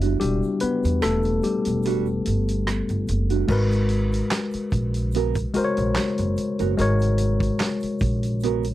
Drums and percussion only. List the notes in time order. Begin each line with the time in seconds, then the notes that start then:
0.01 closed hi-hat, shaker
0.21 closed hi-hat, shaker
0.43 shaker
0.60 closed hi-hat, shaker
0.83 closed hi-hat, shaker
1.02 finger snap, cross-stick, closed hi-hat, shaker
1.22 closed hi-hat, shaker
1.42 closed hi-hat, shaker
1.65 closed hi-hat, shaker
1.83 closed hi-hat, shaker
2.06 shaker
2.25 closed hi-hat, shaker
2.48 closed hi-hat, shaker
2.67 finger snap, cross-stick, closed hi-hat, shaker
2.89 closed hi-hat, shaker
3.07 closed hi-hat, shaker
3.30 closed hi-hat, shaker
3.48 kick, crash, shaker
3.71 closed hi-hat, shaker
3.89 closed hi-hat
4.12 closed hi-hat, shaker
4.31 finger snap, snare, clap, closed hi-hat, shaker
4.51 closed hi-hat, shaker
4.70 kick, closed hi-hat, shaker
4.94 closed hi-hat, shaker
5.12 closed hi-hat, shaker
5.34 kick, closed hi-hat, shaker
5.54 closed hi-hat, shaker
5.77 closed hi-hat, shaker
5.95 finger snap, snare, clap, closed hi-hat, shaker
6.18 closed hi-hat, shaker
6.37 closed hi-hat, shaker
6.59 closed hi-hat, shaker
6.78 closed hi-hat, shaker
6.99 closed hi-hat, shaker
7.18 closed hi-hat
7.40 kick, closed hi-hat, shaker
7.59 finger snap, snare, clap, closed hi-hat, shaker
7.80 closed hi-hat, shaker
7.99 kick, closed hi-hat, shaker
8.23 closed hi-hat, shaker
8.40 closed hi-hat, shaker
8.63 closed hi-hat, shaker